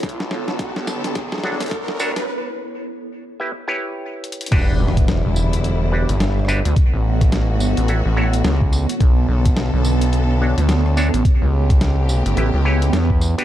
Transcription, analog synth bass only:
0.03 0.30 B1 medium
0.31 0.74 B1 loud
0.77 1.58 B1 loud
1.61 2.14 D2 loud
2.17 2.26 A1 loud
4.52 4.78 E1 loud
4.80 5.22 E1 loud
5.25 6.06 E1 loud
6.09 6.63 G1 loud
6.65 6.75 D2 loud
6.94 7.51 A1 loud
7.51 7.75 G#1 loud
7.78 8.03 A1 medium
8.06 8.43 A1 loud
8.45 8.87 C#2 medium
9.01 9.27 B1 loud
9.29 9.71 B1 medium
9.74 10.55 B1 loud
10.58 11.11 D2 loud
11.14 11.23 A1 loud
11.42 11.99 C#2 loud
11.99 12.23 C2 loud
12.26 12.35 G1 medium
12.37 12.51 A1 loud
12.54 12.91 C#2 medium
12.93 13.35 E2 medium

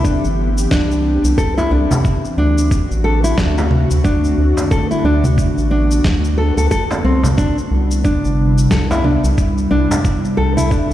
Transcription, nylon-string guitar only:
0.04 0.23 D4 medium
0.71 1.36 D4 medium
1.38 1.56 A4 medium
1.57 1.70 E4 medium
1.71 1.90 D4 medium
2.38 3.03 D4 medium
3.04 3.22 A4 medium
3.24 3.36 E4 medium
3.38 3.56 D4 medium
4.04 4.70 D4 medium
4.71 4.89 A4 medium
4.91 5.03 E4 medium
5.05 5.23 D4 medium
5.71 6.36 D4 medium
6.38 6.56 A4 medium
6.57 6.65 A4 medium
6.71 6.82 A4 medium
7.04 7.22 C4 medium
7.37 7.56 D4 medium
8.04 8.70 D4 medium
8.71 8.89 A4 medium
8.91 9.03 E4 medium
9.04 9.23 D4 medium
9.71 10.36 D4 medium
10.37 10.55 A4 medium
10.57 10.70 E4 medium
10.71 10.90 D4 medium

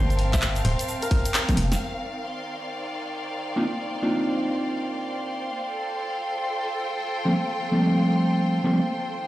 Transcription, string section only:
0.00 2.96 C4 medium
0.00 2.56 A#4 medium
0.00 6.72 F5 medium
0.00 1.81 A5 medium
1.81 5.50 D#3 medium
1.94 9.27 C5 medium
1.94 6.72 D5 medium
2.23 9.27 C6 medium
5.50 9.27 F4 medium
5.68 9.19 A4 medium
5.85 9.27 G5 medium
9.19 9.27 D#3 medium

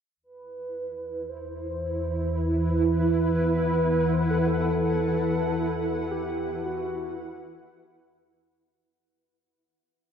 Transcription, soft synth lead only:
0.23 1.31 B4 loud
1.29 2.39 C5 loud
2.37 3.43 B4 loud
3.43 4.15 B4 loud
4.13 4.23 C5 medium
4.22 4.32 B4 medium
4.30 4.40 A4 medium
4.38 4.48 B4 medium
4.47 6.12 A4 loud
6.11 6.66 G4 medium
6.65 7.76 F#4 medium

